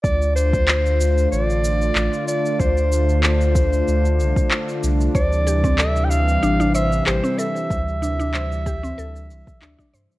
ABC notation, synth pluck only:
X:1
M:4/4
L:1/16
Q:"Swing 16ths" 1/4=94
K:Dm
V:1 name="Synth pluck"
z16 | z16 | c z G C A z3 D D c z G C A z | z2 D D c z G C A z3 D D c z |]